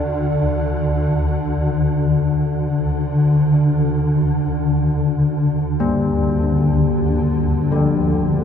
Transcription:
Already playing: synth drone D2 D3, singing bowl D5
3.50 synth drone D2 D3, singing bowl D5
5.80 church bells G3
7.72 church bells D3

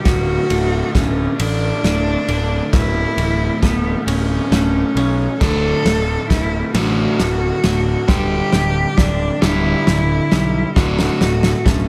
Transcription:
0.03 picked electric bass D1, clean electric guitar D2, cello F#4, kick, snare, ride
0.50 picked electric bass D1, clean electric guitar A2, ride
0.93 picked electric bass D1, clean electric guitar A2, cello C#4, kick, snare, ride
1.38 picked electric bass A1, clean electric guitar D3, cello D4, ride
1.84 picked electric bass D1, clean electric guitar A2, snare, ride
2.28 picked electric bass D1, clean electric guitar D3, ride
2.73 picked electric bass D1, clean electric guitar A2, cello E4, kick, snare, ride
3.17 picked electric bass D1, clean electric guitar E3, ride
3.62 picked electric bass D1, clean electric guitar A3, cello B3, kick, snare, ride
4.06 picked electric bass D1, cello C#4, clean electric guitar C#4, ride
4.51 picked electric bass D1, clean electric guitar A3, snare, ride
4.95 picked electric bass B1, clean electric guitar C#4, ride
5.39 picked electric bass D1, overdriven electric guitar D2 A2 D3, clean electric guitar D2, cello A4, kick, snare, crash
5.85 picked electric bass D1, overdriven electric guitar D2 A2, clean electric guitar A2, snare, ride
6.29 picked electric bass D1, clean electric guitar A2, cello E4, kick, snare, ride
6.73 picked electric bass A1, overdriven electric guitar D2 A2 D3, clean electric guitar D3, cello F#4, snare, ride
7.19 picked electric bass D1, overdriven electric guitar D2 A2, clean electric guitar A2, snare, ride
7.64 picked electric bass D1, overdriven electric guitar D2 A2, clean electric guitar D3, snare, ride
8.08 picked electric bass D1, overdriven electric guitar G2 D3 G3, clean electric guitar G2, cello G4, kick, snare
8.53 picked electric bass D1, overdriven electric guitar G2 D3, clean electric guitar D3, snare
8.97 picked electric bass D1, clean electric guitar D3, cello D4, kick, snare
9.42 picked electric bass D1, overdriven electric guitar G2 D3 G3, clean electric guitar G3, cello E4, snare
9.87 picked electric bass D1, overdriven electric guitar G2 D3, clean electric guitar D3, snare
10.31 picked electric bass B1, overdriven electric guitar G2 D3, clean electric guitar G3, snare
10.75 picked electric bass D1, clean electric guitar D2, overdriven electric guitar D2 A2 D3, cello F#4, kick, snare
10.99 snare
11.21 picked electric bass D1, overdriven electric guitar D2 A2, clean electric guitar A2, snare
11.43 snare
11.65 picked electric bass D1, clean electric guitar A2, cello C#4, kick, snare

